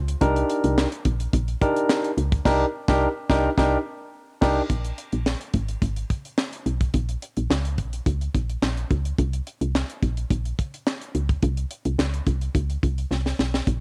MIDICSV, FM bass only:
0, 0, Header, 1, 2, 480
1, 0, Start_track
1, 0, Tempo, 560748
1, 182, Time_signature, 4, 2, 24, 8
1, 11815, End_track
2, 0, Start_track
2, 0, Title_t, "FM bass"
2, 0, Program_c, 0, 39
2, 0, Note_on_c, 0, 37, 84
2, 136, Note_off_c, 0, 37, 0
2, 182, Note_on_c, 0, 36, 115
2, 374, Note_off_c, 0, 36, 0
2, 549, Note_on_c, 0, 36, 108
2, 741, Note_off_c, 0, 36, 0
2, 900, Note_on_c, 0, 34, 94
2, 1093, Note_off_c, 0, 34, 0
2, 1140, Note_on_c, 0, 34, 95
2, 1333, Note_off_c, 0, 34, 0
2, 1861, Note_on_c, 0, 37, 89
2, 2054, Note_off_c, 0, 37, 0
2, 2101, Note_on_c, 0, 36, 101
2, 2267, Note_off_c, 0, 36, 0
2, 2468, Note_on_c, 0, 36, 104
2, 2629, Note_off_c, 0, 36, 0
2, 2821, Note_on_c, 0, 36, 108
2, 2987, Note_off_c, 0, 36, 0
2, 3062, Note_on_c, 0, 36, 104
2, 3228, Note_off_c, 0, 36, 0
2, 3783, Note_on_c, 0, 36, 104
2, 3948, Note_off_c, 0, 36, 0
2, 4021, Note_on_c, 0, 34, 90
2, 4213, Note_off_c, 0, 34, 0
2, 4391, Note_on_c, 0, 34, 94
2, 4582, Note_off_c, 0, 34, 0
2, 4741, Note_on_c, 0, 32, 100
2, 4934, Note_off_c, 0, 32, 0
2, 4980, Note_on_c, 0, 32, 89
2, 5173, Note_off_c, 0, 32, 0
2, 5701, Note_on_c, 0, 35, 88
2, 5894, Note_off_c, 0, 35, 0
2, 5940, Note_on_c, 0, 34, 98
2, 6133, Note_off_c, 0, 34, 0
2, 6311, Note_on_c, 0, 34, 91
2, 6400, Note_off_c, 0, 34, 0
2, 6421, Note_on_c, 0, 37, 89
2, 6661, Note_on_c, 0, 34, 90
2, 6673, Note_off_c, 0, 37, 0
2, 6853, Note_off_c, 0, 34, 0
2, 6901, Note_on_c, 0, 37, 89
2, 7093, Note_off_c, 0, 37, 0
2, 7143, Note_on_c, 0, 34, 80
2, 7335, Note_off_c, 0, 34, 0
2, 7381, Note_on_c, 0, 34, 86
2, 7574, Note_off_c, 0, 34, 0
2, 7624, Note_on_c, 0, 37, 84
2, 7815, Note_off_c, 0, 37, 0
2, 7862, Note_on_c, 0, 36, 107
2, 8054, Note_off_c, 0, 36, 0
2, 8228, Note_on_c, 0, 36, 93
2, 8421, Note_off_c, 0, 36, 0
2, 8581, Note_on_c, 0, 34, 94
2, 8774, Note_off_c, 0, 34, 0
2, 8821, Note_on_c, 0, 34, 88
2, 9014, Note_off_c, 0, 34, 0
2, 9542, Note_on_c, 0, 37, 83
2, 9734, Note_off_c, 0, 37, 0
2, 9782, Note_on_c, 0, 36, 109
2, 9974, Note_off_c, 0, 36, 0
2, 10147, Note_on_c, 0, 36, 94
2, 10238, Note_off_c, 0, 36, 0
2, 10259, Note_on_c, 0, 37, 88
2, 10453, Note_off_c, 0, 37, 0
2, 10500, Note_on_c, 0, 36, 91
2, 10693, Note_off_c, 0, 36, 0
2, 10740, Note_on_c, 0, 37, 98
2, 10933, Note_off_c, 0, 37, 0
2, 10982, Note_on_c, 0, 36, 91
2, 11174, Note_off_c, 0, 36, 0
2, 11221, Note_on_c, 0, 36, 86
2, 11413, Note_off_c, 0, 36, 0
2, 11463, Note_on_c, 0, 35, 75
2, 11655, Note_off_c, 0, 35, 0
2, 11702, Note_on_c, 0, 34, 92
2, 11815, Note_off_c, 0, 34, 0
2, 11815, End_track
0, 0, End_of_file